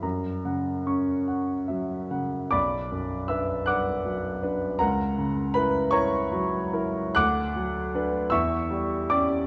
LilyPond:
\new Staff \with { instrumentName = "Grand piano" } { \time 6/8 \key b \minor \tempo 4. = 51 << { ais''8 fis''8 cis'''8 fis''8 e''8 fis''8 | <d'' b'' d'''>4 <e'' e'''>8 <fis'' d''' fis'''>4. | <ais' fis'' ais''>4 <b' b''>8 <cis'' ais'' cis'''>4. | <fis'' d''' fis'''>4. <e'' cis''' e'''>4 <d'' d'''>8 | } \\ { fis,8 cis8 cis'4 fis8 cis8 | b,,8 fis,8 <d' b'>8 <d' b'>8 fis8 <d' b'>8 | cis,8 cis8 <e' ais'>8 <e' ais'>8 fis8 <e' ais'>8 | d,8 fis8 <d' b'>8 e,8 g8 <cis' g'>8 | } >> }